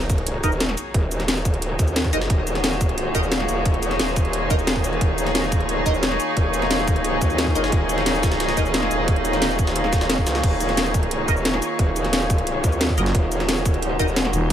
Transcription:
Already playing: wobble bass D#1, synth drone D#3 A#3 F4 F#4, string section D#4 G#4, impact
0.01 snare, shaker
0.06 string section C#5, kick, closed hi-hat, shaker
0.18 closed hi-hat
0.27 closed hi-hat
0.44 wobble bass D#1, synth stab D#4 A#4 D#5, kick, closed hi-hat, shaker
0.52 shaker
0.60 snare, closed hi-hat
0.69 snare
0.77 closed hi-hat, shaker
0.94 wobble bass D#1, kick, closed hi-hat
1.11 closed hi-hat, shaker
1.20 snare, closed hi-hat
1.28 snare, closed hi-hat
1.37 snare, shaker
1.45 kick, closed hi-hat, shaker
1.53 wobble bass D1, closed hi-hat
1.62 closed hi-hat
1.79 wobble bass D#2, kick, closed hi-hat, shaker
1.88 closed hi-hat, shaker
1.96 snare, closed hi-hat
2.04 kick, snare
2.13 wobble bass F#1, synth stab D#4 A#4 D#5, closed hi-hat, shaker
2.21 snare, closed hi-hat
2.30 wobble bass D#1, kick, closed hi-hat
2.47 closed hi-hat, shaker
2.55 snare, closed hi-hat
2.64 snare, closed hi-hat
2.72 snare, shaker
2.81 kick, closed hi-hat, shaker
2.89 closed hi-hat
2.98 closed hi-hat
3.15 wobble bass D#1, synth stab D#4 A#4 D#5, kick, closed hi-hat, shaker
3.23 shaker
3.32 snare, closed hi-hat
3.40 snare
3.49 wobble bass D#1, closed hi-hat, shaker
3.65 kick, closed hi-hat
3.74 closed hi-hat
3.83 closed hi-hat, shaker
3.91 snare, closed hi-hat
3.99 wobble bass D#1, snare, closed hi-hat
4.08 snare, shaker
4.16 kick, closed hi-hat, shaker
4.25 closed hi-hat
4.33 closed hi-hat
4.50 synth stab D#4 A#4 D#5, kick, closed hi-hat, shaker
4.59 closed hi-hat, shaker
4.67 snare, closed hi-hat
4.76 kick, closed hi-hat
4.84 closed hi-hat, shaker
4.93 closed hi-hat
5.01 wobble bass D#1, synth drone G#4, kick, closed hi-hat
5.18 closed hi-hat, shaker
5.27 snare, closed hi-hat
5.35 snare, closed hi-hat
5.44 snare, shaker
5.50 string section D#5, kick, closed hi-hat, shaker
5.60 wobble bass D1, closed hi-hat
5.69 closed hi-hat
5.86 wobble bass D#1, synth stab D#4 A#4 D#5, kick, closed hi-hat, shaker
5.94 shaker
6.03 snare, closed hi-hat
6.11 snare
6.20 closed hi-hat, shaker
6.37 wobble bass D#1, kick, closed hi-hat
6.54 closed hi-hat, shaker
6.62 snare, closed hi-hat
6.71 snare, closed hi-hat
6.79 snare, shaker
6.88 kick, closed hi-hat, shaker
6.96 closed hi-hat
7.04 closed hi-hat
7.21 wobble bass D#2, kick, closed hi-hat, shaker
7.30 closed hi-hat, shaker
7.38 snare, closed hi-hat
7.47 kick, snare
7.55 wobble bass F#1, synth stab D#4 A#4 D#5, closed hi-hat, shaker
7.64 snare, closed hi-hat
7.72 wobble bass D#1, kick, closed hi-hat
7.89 closed hi-hat, shaker
7.98 snare, closed hi-hat
8.06 snare, closed hi-hat
8.15 snare, shaker
8.23 kick, snare, closed hi-hat, shaker
8.32 snare, closed hi-hat
8.40 snare, closed hi-hat
8.49 snare, closed hi-hat
8.57 wobble bass D#1, synth stab D#4 A#4 D#5, kick, closed hi-hat, shaker
8.66 shaker
8.74 snare, closed hi-hat
8.82 snare
8.91 wobble bass D#1, closed hi-hat, shaker
9.08 kick, closed hi-hat
9.16 closed hi-hat
9.25 closed hi-hat, shaker
9.33 snare, closed hi-hat, shaker
9.42 snare, closed hi-hat
9.50 snare, shaker
9.59 kick, closed hi-hat, shaker
9.67 snare, closed hi-hat
9.76 closed hi-hat
9.84 snare
9.93 kick, snare, closed hi-hat, shaker
10.01 snare, closed hi-hat, shaker
10.10 snare, closed hi-hat
10.18 kick
10.26 wobble bass C#2, snare, closed hi-hat, shaker
10.35 snare, closed hi-hat
10.43 wobble bass D#1, synth drone F#4, kick, closed hi-hat, crash
10.60 closed hi-hat, shaker
10.69 snare, closed hi-hat
10.77 snare, closed hi-hat
10.86 snare, shaker
10.94 kick, closed hi-hat, shaker
11.03 closed hi-hat
11.11 closed hi-hat
11.28 wobble bass D#1, synth stab D#4 A#4 D#5, kick, closed hi-hat, shaker
11.37 shaker
11.45 snare, closed hi-hat
11.54 snare
11.62 closed hi-hat, shaker
11.79 wobble bass D#1, kick, closed hi-hat
11.96 closed hi-hat, shaker
12.04 snare, closed hi-hat
12.13 snare, closed hi-hat
12.21 snare, shaker
12.30 kick, closed hi-hat, shaker
12.38 closed hi-hat
12.47 closed hi-hat
12.64 wobble bass D#2, kick, closed hi-hat, shaker
12.72 closed hi-hat, shaker
12.81 snare, closed hi-hat
12.89 kick, snare
12.98 fm bass F#1, synth stab D#4 A#4 D#5, closed hi-hat, shaker
13.06 snare, closed hi-hat
13.15 wobble bass D#1, kick, closed hi-hat
13.32 closed hi-hat, shaker
13.40 snare, closed hi-hat
13.49 snare, closed hi-hat
13.57 snare, shaker
13.65 kick, closed hi-hat, shaker
13.74 wobble bass D1, closed hi-hat
13.82 closed hi-hat
13.99 wobble bass D#1, synth stab D#4 A#4 D#5, kick, closed hi-hat, shaker
14.08 shaker
14.16 snare, closed hi-hat
14.25 snare
14.33 fm bass D#1, closed hi-hat, shaker

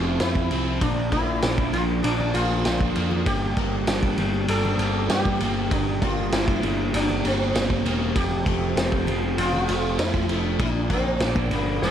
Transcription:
Already playing: picked electric bass F1, overdriven electric guitar F3 C4 F4, tonewheel organ F3 C5 A5, sitar F4
0.04 sitar E4
0.20 picked electric bass F2, overdriven electric guitar F3, sitar E4, snare, ride
0.35 kick, high conga
0.51 picked electric bass C2, overdriven electric guitar C4, ride, low conga
0.81 picked electric bass A#1, overdriven electric guitar A#2, sitar D4, tonewheel organ D5 A#5, kick, ride
1.12 picked electric bass A#1, overdriven electric guitar A#3, sitar E4, kick, ride, high conga
1.42 picked electric bass A#1, overdriven electric guitar D4, snare, ride
1.58 kick, high conga
1.73 picked electric bass A#1, overdriven electric guitar F3, sitar F4, ride, low conga
2.03 picked electric bass A#1, sitar D4, overdriven electric guitar D4, ride
2.20 low conga
2.34 picked electric bass A#1, overdriven electric guitar A#3, sitar F4, ride
2.50 high conga
2.65 picked electric bass A#1, overdriven electric guitar F3, snare, ride, high conga
2.81 kick, high conga
2.96 picked electric bass F2, overdriven electric guitar A#3, ride, low conga
3.11 low conga
3.26 picked electric bass G1, overdriven electric guitar G2, tonewheel organ A#3 G4 A5, sitar G4, kick, ride
3.57 picked electric bass G1, overdriven electric guitar A#3, kick, ride, high conga
3.87 picked electric bass G1, overdriven electric guitar D4, snare, ride
4.03 kick, high conga
4.18 picked electric bass G1, overdriven electric guitar G3, ride, low conga
4.34 high conga
4.48 picked electric bass G1, overdriven electric guitar D4, sitar A4, ride
4.65 low conga
4.78 picked electric bass G1, overdriven electric guitar A#3, ride
5.09 picked electric bass G2, overdriven electric guitar G3, sitar G4, snare, ride
5.25 kick, high conga
5.40 picked electric bass G1, overdriven electric guitar A#3, ride, low conga
5.71 picked electric bass G1, overdriven electric guitar G2, sitar D4, tonewheel organ A#5, kick, ride
6.02 picked electric bass G1, overdriven electric guitar A#3, sitar F4, kick, ride, high conga
6.32 picked electric bass G1, overdriven electric guitar D4, sitar E4, snare, ride
6.48 kick, high conga
6.63 picked electric bass G1, overdriven electric guitar G3, ride, low conga
6.80 high conga
6.93 picked electric bass G1, overdriven electric guitar D4, sitar D4, ride
7.10 low conga
7.24 picked electric bass G1, overdriven electric guitar A#3, sitar C4, ride
7.55 picked electric bass G1, overdriven electric guitar G3, snare, ride
7.70 kick, high conga
7.85 picked electric bass E1, overdriven electric guitar A#3, ride, low conga
8.16 picked electric bass F1, overdriven electric guitar F2, tonewheel organ F3 C5 A5, sitar G4, kick, ride
8.46 picked electric bass F1, overdriven electric guitar A3, kick, ride, high conga
8.76 picked electric bass F1, overdriven electric guitar C4, snare, ride
8.91 kick, high conga
9.07 picked electric bass F1, overdriven electric guitar F3, ride, low conga
9.23 high conga
9.37 picked electric bass F1, overdriven electric guitar C4, sitar F4, ride
9.54 low conga
9.68 picked electric bass F1, overdriven electric guitar A3, ride
9.99 picked electric bass F2, overdriven electric guitar F3, sitar E4, snare, ride
10.14 kick, high conga
10.29 picked electric bass F1, overdriven electric guitar A3, ride
10.43 sitar D4
10.59 picked electric bass A#1, overdriven electric guitar A#2, sitar D4, tonewheel organ D5 A#5, kick, ride
10.90 picked electric bass A#1, overdriven electric guitar A#3, sitar C4, kick, ride, high conga
11.20 picked electric bass A#1, overdriven electric guitar D4, snare, ride
11.35 kick, high conga
11.40 sitar A#3
11.51 picked electric bass G1, overdriven electric guitar D3, sitar A#3, ride, low conga
11.81 picked electric bass F1, overdriven electric guitar F2, sitar A3, tonewheel organ C5, snare

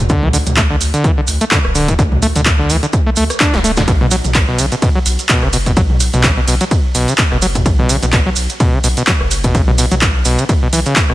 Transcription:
0.09 sub bass D2, acid bass D3, kick, closed hi-hat, maracas
0.23 acid bass E3, mid tom
0.33 acid bass D3, open hi-hat, maracas
0.46 sub bass D2, closed hi-hat, mid tom, maracas
0.57 acid bass A3, kick, clap, closed hi-hat, maracas
0.70 acid bass D3
0.81 sub bass D2, open hi-hat, maracas
0.94 acid bass D3, closed hi-hat, maracas
1.04 acid bass E3, kick, closed hi-hat, maracas
1.17 acid bass D3
1.27 sub bass D2, open hi-hat, maracas
1.41 acid bass A3, closed hi-hat, maracas
1.51 acid bass D3, kick, clap, closed hi-hat, maracas
1.65 sub bass D1, cross-stick
1.75 acid bass D3, open hi-hat, maracas
1.88 acid bass E3, kick, closed hi-hat, maracas
1.99 sub bass D2, acid bass D3, kick, closed hi-hat, maracas
2.12 mid tom
2.22 acid bass A3, open hi-hat, maracas
2.36 sub bass D2, acid bass D3, closed hi-hat, mid tom, maracas
2.46 kick, clap, closed hi-hat, maracas
2.59 acid bass D3
2.70 sub bass D2, acid bass E3, open hi-hat, maracas
2.83 acid bass D3, closed hi-hat, maracas
2.93 kick, closed hi-hat, maracas
3.07 acid bass A3
3.16 sub bass D2, acid bass A3, open hi-hat, maracas
3.30 cross-stick, closed hi-hat, maracas
3.40 acid bass D4, kick, clap, closed hi-hat, maracas
3.54 sub bass D1, acid bass F3, snare
3.64 acid bass A3, open hi-hat, maracas
3.77 acid bass D3, kick, snare, closed hi-hat, mid tom, maracas
3.88 sub bass B1, acid bass B2, kick, closed hi-hat, ride, maracas
4.01 acid bass B2, mid tom
4.11 acid bass F#3, open hi-hat, ride, maracas
4.25 sub bass B1, closed hi-hat, mid tom, maracas
4.34 kick, clap, closed hi-hat, ride, maracas
4.48 acid bass B2
4.59 sub bass B1, acid bass C#3, open hi-hat, ride, maracas
4.72 acid bass B2, closed hi-hat, maracas
4.82 acid bass B2, kick, closed hi-hat, ride, maracas
4.95 acid bass F#3
5.06 sub bass B1, open hi-hat, ride, maracas
5.19 closed hi-hat, maracas
5.29 acid bass B2, kick, clap, closed hi-hat, ride, maracas
5.43 sub bass F#1, acid bass C#3, cross-stick
5.53 acid bass B2, open hi-hat, ride, maracas
5.66 acid bass B2, kick, closed hi-hat, maracas
5.77 sub bass B1, acid bass F#3, kick, closed hi-hat, ride, maracas
5.90 mid tom
6.00 open hi-hat, ride, maracas
6.13 sub bass B1, acid bass B2, closed hi-hat, mid tom, maracas
6.23 acid bass C#3, kick, clap, closed hi-hat, ride, maracas
6.37 acid bass B2
6.48 sub bass B1, acid bass B2, open hi-hat, ride, maracas
6.61 acid bass F#3, closed hi-hat, maracas
6.71 kick, closed hi-hat, ride, maracas
6.95 sub bass B1, acid bass B2, open hi-hat, ride, maracas
7.08 acid bass C#3, closed hi-hat, maracas
7.18 acid bass B2, kick, clap, closed hi-hat, ride, maracas
7.32 sub bass F#1, acid bass B2, cross-stick
7.42 acid bass F#3, open hi-hat, ride, maracas
7.55 kick, closed hi-hat, mid tom, maracas
7.66 sub bass B1, kick, closed hi-hat, ride, maracas
7.79 acid bass B2, mid tom
7.89 acid bass C#3, open hi-hat, ride, maracas
8.03 sub bass B1, acid bass B2, closed hi-hat, mid tom, maracas
8.12 acid bass B2, kick, clap, closed hi-hat, ride, maracas
8.26 acid bass F#3
8.36 sub bass B1, open hi-hat, ride, maracas
8.49 closed hi-hat, maracas
8.60 acid bass B2, kick, closed hi-hat, ride, maracas
8.73 acid bass C#3
8.84 sub bass B1, acid bass B2, open hi-hat, ride, maracas
8.97 acid bass B2, closed hi-hat, maracas
9.07 acid bass F#3, kick, clap, closed hi-hat, ride, maracas
9.21 sub bass F#1, cross-stick
9.31 open hi-hat, ride, maracas
9.43 acid bass B2, kick, closed hi-hat, maracas
9.55 sub bass B1, acid bass C#3, kick, closed hi-hat, ride, maracas
9.68 acid bass B2, mid tom
9.78 acid bass B2, open hi-hat, ride, maracas
9.91 sub bass B1, acid bass F#3, closed hi-hat, mid tom, maracas
10.01 kick, clap, closed hi-hat, ride, maracas
10.25 sub bass B1, acid bass B2, open hi-hat, ride, maracas
10.38 acid bass C#3, closed hi-hat, maracas
10.49 acid bass B2, kick, closed hi-hat, ride, maracas
10.62 acid bass B2
10.73 sub bass B1, acid bass E3, open hi-hat, ride, maracas
10.86 acid bass C#3, closed hi-hat, maracas
10.96 kick, clap, closed hi-hat, ride, maracas
11.10 sub bass F#1, acid bass B2, cross-stick

